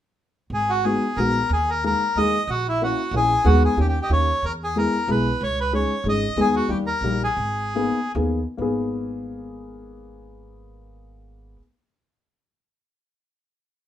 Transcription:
0.50 0.94 G#1 medium
0.50 0.71 G#4 medium
0.69 0.85 F#4 medium
0.84 1.03 G#3 soft
0.84 1.03 B3 soft
0.84 1.03 D#4 soft
0.84 1.03 F#4 medium
0.84 1.19 G#4 medium
1.16 1.38 A#1 medium
1.16 1.36 G#3 medium
1.16 1.36 B3 soft
1.16 1.36 D#4 soft
1.16 1.36 F#4 medium
1.16 1.51 A#4 medium
1.49 1.92 D#2 medium
1.49 1.70 G#4 medium
1.70 1.84 A#4 medium
1.84 2.02 G#3 soft
1.84 2.01 A#3 medium
1.84 2.01 D#4 soft
1.84 2.01 G#4 medium
1.84 2.18 A#4 medium
2.15 2.37 D#2 medium
2.15 2.34 G#3 soft
2.15 2.34 A#3 soft
2.15 2.35 D#4 soft
2.15 2.35 G#4 medium
2.15 2.50 D#5 loud
2.48 2.89 A#1 medium
2.48 2.67 F#4 medium
2.69 2.82 E4 medium
2.82 2.98 A#3 medium
2.82 2.99 C#4 soft
2.82 2.99 E4 medium
2.82 3.15 F#4 medium
2.82 2.98 A#4 medium
3.11 3.33 A#1 medium
3.11 3.30 A#3 soft
3.11 3.30 C#4 medium
3.11 3.30 E4 soft
3.11 3.30 A#4 medium
3.16 3.47 G#4 medium
3.44 3.66 D#2 medium
3.44 3.71 G#3 medium
3.44 3.71 B3 medium
3.44 3.71 D#4 medium
3.44 3.63 F#4 medium
3.44 3.71 G#4 medium
3.65 3.79 G#4 medium
3.77 3.98 D#2 medium
3.77 3.95 A#3 soft
3.77 3.95 C#4 soft
3.77 3.95 D#4 soft
3.77 3.95 G4 medium
3.77 3.87 G4 medium
3.88 3.99 G4 medium
4.02 4.11 G4 medium
4.02 4.10 D#5 medium
4.09 4.31 D#2 medium
4.09 4.28 A#3 medium
4.09 4.28 C#4 soft
4.09 4.28 D#4 soft
4.09 4.28 G4 soft
4.09 4.45 C#5 medium
4.42 4.85 E2 medium
4.42 4.52 A#4 medium
4.64 4.78 G#4 medium
4.76 4.93 G#3 medium
4.76 4.93 B3 soft
4.76 4.94 E4 soft
4.76 4.94 G#4 medium
4.76 5.10 A#4 medium
5.08 5.29 B1 medium
5.08 5.26 G#3 medium
5.08 5.26 B3 medium
5.08 5.26 E4 soft
5.08 5.26 G#4 medium
5.08 5.43 B4 medium
5.41 5.82 C#2 medium
5.41 5.59 C#5 medium
5.61 5.73 B4 medium
5.73 5.90 G#3 soft
5.73 5.90 C#4 medium
5.73 5.90 D#4 soft
5.73 5.90 G#4 medium
5.73 6.07 C#5 medium
6.04 6.25 G#1 medium
6.04 6.23 G#3 soft
6.04 6.23 C#4 soft
6.04 6.23 D#4 medium
6.04 6.23 G#4 medium
6.09 6.40 D#5 medium
6.36 6.58 D#2 medium
6.36 6.64 G#3 medium
6.36 6.64 B3 medium
6.36 6.64 D#4 medium
6.36 6.64 G#4 medium
6.40 6.55 G#4 medium
6.56 6.71 F#4 medium
6.68 6.91 D#2 medium
6.68 6.87 G3 medium
6.68 6.87 A#3 soft
6.68 6.87 D#4 soft
6.68 6.87 G4 medium
6.68 6.78 G4 medium
6.86 7.22 A#4 medium
7.01 7.24 A#1 medium
7.01 7.22 G3 medium
7.01 7.22 A#3 medium
7.01 7.23 D#4 soft
7.01 7.22 G4 medium
7.24 8.12 G#4 medium
7.37 7.87 G#1 medium
7.75 7.96 A#3 medium
7.75 7.97 B3 medium
7.75 7.97 D#4 medium
7.75 7.96 G#4 medium
8.15 8.43 D#2 medium
8.15 8.38 A#3 medium
8.15 8.39 B3 soft
8.15 8.39 D#4 medium
8.15 8.38 G#4 medium
8.57 11.55 G#1 medium
8.57 11.55 A#3 medium
8.57 11.56 B3 medium
8.57 11.58 D#4 soft
8.62 11.59 G#4 medium

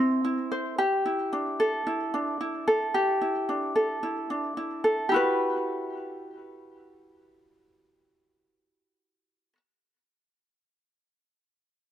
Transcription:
0.00 0.84 C4 medium
0.00 0.23 E4 medium
0.00 0.81 A4 medium
0.00 0.50 C5 medium
0.25 0.84 E4 medium
0.52 0.78 C5 medium
0.78 2.94 G4 medium
1.06 1.86 E4 medium
1.33 2.13 D4 medium
1.60 2.66 A4 medium
1.87 2.40 E4 medium
2.14 3.48 D4 medium
2.41 3.21 E4 medium
2.68 3.74 A4 medium
2.94 5.09 G4 medium
3.21 4.02 E4 soft
3.49 4.29 D4 soft
3.76 4.83 A4 medium
4.03 4.57 E4 medium
4.30 5.11 D4 medium
4.57 5.12 E4 medium
4.84 5.16 A4 medium
5.09 9.53 E4 medium
5.09 9.50 G4 medium
5.14 9.55 F#4 medium
5.14 9.57 B4 medium

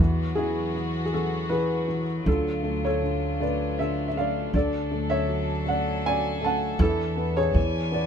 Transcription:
0.00 2.22 E2 medium
0.00 0.34 E3 medium
0.00 4.50 F#3 medium
0.00 0.34 B3 medium
0.00 2.25 B3 medium
0.00 0.40 F#4 medium
0.00 2.24 F#4 medium
0.35 0.73 E3 medium
0.35 1.02 E4 medium
0.35 1.04 G#4 medium
0.74 1.12 E3 soft
1.06 1.13 G#4 medium
1.13 1.48 E3 medium
1.13 1.49 F#4 medium
1.13 1.52 A4 medium
1.49 1.86 E3 medium
1.49 2.04 G#4 medium
1.49 2.03 B4 medium
1.88 2.25 E3 medium
2.25 4.50 D2 medium
2.25 3.01 D3 medium
2.25 6.77 D4 medium
2.25 2.81 F4 medium
2.25 4.53 F4 medium
2.25 2.85 A4 medium
2.63 3.39 A3 medium
2.85 3.38 A4 medium
2.85 3.43 C#5 medium
3.02 3.78 D3 medium
3.40 4.15 A3 medium
3.40 3.76 B4 medium
3.40 3.80 D5 medium
3.79 4.51 D3 soft
3.79 4.08 A4 medium
3.79 4.06 E5 medium
4.08 4.15 E5 medium
4.17 4.53 A3 soft
4.17 4.53 D5 medium
4.17 4.56 F5 medium
4.53 6.76 D2 medium
4.53 6.75 D3 medium
4.53 6.77 F#3 medium
4.53 7.52 A4 medium
4.53 5.08 A4 medium
4.53 5.13 D5 medium
4.91 5.64 A3 medium
5.10 5.63 C#5 medium
5.10 5.68 E5 loud
5.28 6.04 F#4 soft
5.66 6.40 A3 medium
5.66 6.06 F#5 medium
5.70 6.04 D5 medium
6.05 6.78 F#4 soft
6.05 6.41 D5 medium
6.05 6.44 G#5 loud
6.41 6.78 A3 medium
6.41 6.82 A5 medium
6.46 6.79 F#5 medium
6.79 7.53 E2 medium
6.79 7.52 E3 medium
6.79 7.54 E3 medium
6.79 8.06 D4 medium
6.79 7.34 E4 medium
6.79 7.39 A4 loud
7.17 7.54 B3 medium
7.37 7.89 G#4 medium
7.37 7.95 C#5 loud
7.54 8.06 E2 medium
7.54 8.06 E3 medium
7.54 8.06 G#5 medium
7.92 8.06 B3 medium
7.92 8.06 B4 medium
7.92 8.06 D5 medium

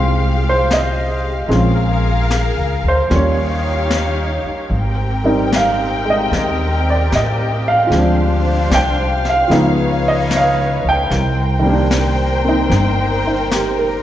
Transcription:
0.00 1.45 C2 medium
0.00 1.46 G#3 medium
0.00 1.47 G#3 soft
0.00 1.49 C4 soft
0.00 1.52 D#4 soft
0.00 1.49 F4 soft
0.00 1.46 G4 medium
0.00 1.53 G4 soft
0.00 0.49 C5 medium
0.00 1.46 F5 medium
0.49 0.72 C5 medium
0.71 1.48 D#5 medium
0.71 snare soft
0.71 hi-hat pedal soft
1.47 2.52 A#1 medium
1.47 3.09 G#3 soft
1.47 3.10 C4 soft
1.47 3.09 C#4 soft
1.47 3.09 F4 soft
1.47 3.07 G#4 medium
1.47 3.07 A#4 medium
1.47 3.08 F5 medium
1.47 brush sweep soft
1.47 snare soft
2.30 snare soft
2.30 hi-hat pedal medium
2.57 2.82 C#2 soft
2.83 3.08 D2 medium
2.88 3.11 C5 medium
3.10 4.41 D#2 medium
3.10 4.70 G3 soft
3.10 4.71 A#3 soft
3.10 4.71 C#4 soft
3.10 4.69 D#4 medium
3.10 4.71 F4 soft
3.10 4.69 G4 medium
3.10 4.69 C#5 medium
3.10 4.69 F5 medium
3.10 brush sweep soft
3.10 snare soft
3.15 3.89 C#5 medium
3.90 snare soft
3.90 hi-hat pedal soft
4.44 muted upright bass stroke soft
4.70 6.26 G#1 medium
4.70 7.88 C4 medium
4.70 9.48 G4 medium
4.70 7.88 A#4 medium
4.70 7.88 G5 medium
4.70 brush sweep soft
5.24 7.91 G3 soft
5.24 7.91 C4 soft
5.24 7.91 D#4 medium
5.24 7.91 A#4 soft
5.52 6.06 F5 medium
5.52 snare soft
5.52 hi-hat pedal soft
6.05 7.88 G#3 soft
6.10 6.84 D#5 medium
6.31 7.07 D#2 medium
6.31 brush sweep soft
6.31 snare soft
6.90 7.13 D5 medium
7.12 7.87 A2 medium
7.12 7.66 D#5 medium
7.12 snare soft
7.12 hi-hat pedal soft
7.68 8.43 F5 medium
7.87 8.67 D2 medium
7.87 9.46 F3 soft
7.87 9.49 G#3 soft
7.92 9.52 C4 soft
7.92 9.51 D4 medium
7.92 9.51 C5 medium
7.92 11.09 F5 medium
7.92 brush sweep soft
7.92 snare soft
7.99 9.55 D4 medium
8.70 9.46 C2 medium
8.70 snare soft
8.70 hi-hat pedal soft
8.74 9.25 G5 medium
9.25 snare soft
9.29 10.03 F5 medium
9.48 10.80 C#2 medium
9.48 11.09 F3 soft
9.48 11.10 G#3 soft
9.48 11.10 B3 soft
9.48 11.09 B4 medium
9.48 11.09 C#5 medium
9.48 brush sweep soft
9.48 snare soft
9.52 11.11 D#4 medium
10.08 10.32 D#5 medium
10.31 snare soft
10.31 hi-hat pedal medium
10.37 10.86 F5 medium
10.84 11.09 C#2 medium
10.89 11.63 G5 medium
11.10 12.66 C2 medium
11.10 14.03 A#4 medium
11.10 14.03 C5 medium
11.10 14.03 G5 medium
11.10 brush sweep soft
11.10 snare soft
11.59 14.03 D#3 soft
11.59 14.03 G3 soft
11.66 12.43 A#3 soft
11.66 14.03 D4 medium
11.91 snare soft
11.91 hi-hat pedal medium
12.45 14.03 A#3 soft
12.45 14.03 C4 soft
12.45 13.26 D#4 soft
12.70 14.00 G1 medium
12.70 brush sweep soft
12.70 snare soft
13.27 13.67 D#4 soft
13.51 14.01 G4 soft
13.51 snare soft
13.51 hi-hat pedal medium
13.79 14.03 A#4 soft

